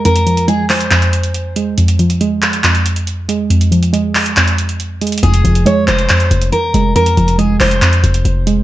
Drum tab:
HH |x-x-x-x-x---o-x-x-x-x-x-x---x---|x-x-x-x-x---x-x-x-x-x-x-x---x---|x-x-x-x-x---o-x-x-x-x-x-x---xxxx|x-x-x-x-x---x-x-x-x-x-x-x---x---|
CP |------------x---x---------------|------------x---x---------------|------------x---x---------------|------------x---x---------------|

HH |x-x-x-x-x---o-x-x-x-x-x-x---x---|
CP |------------x---x---------------|